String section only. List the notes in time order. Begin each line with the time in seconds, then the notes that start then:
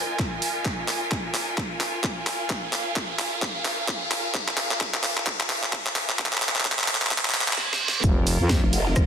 Already playing: F4 A#4 D#5 G#5
1.53 F5
8.04 F4
8.12 A#4
8.73 D#5